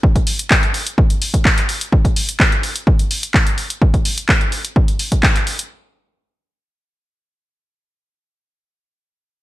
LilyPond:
\new DrumStaff \with { instrumentName = "Drums" } \drummode { \time 4/4 \tempo 4 = 127 bd16 <hh bd>16 hho16 hh16 <hc bd>16 hh16 hho16 hh16 bd16 hh16 hho16 <hh bd>16 <hc bd>16 <hc hh>16 hho16 hh16 | bd16 <hh bd>16 hho16 hh16 <hc bd>16 hh16 hho16 hh16 bd16 hh16 hho16 hh16 <hc bd>16 hh16 hho16 hh16 | bd16 <hh bd>16 hho16 hh16 <hc bd>16 hh16 hho16 hh16 bd16 hh16 hho16 <hh bd>16 <hc bd>16 <hc hh>16 hho16 hh16 | r4 r4 r4 r4 |
r4 r4 r4 r4 | }